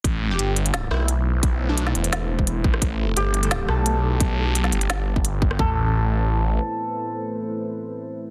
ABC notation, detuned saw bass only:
X:1
M:4/4
L:1/8
Q:1/4=173
K:Am
V:1 name="Detuned saw bass" clef=bass
A,,,2 G,,,3 B,,,3- | B,,,3 E,,,4 A,,, | A,,,2 G,,,3 B,,,3- | B,,,3 G,,,4- G,,, |
A,,,6 z2 | z8 |]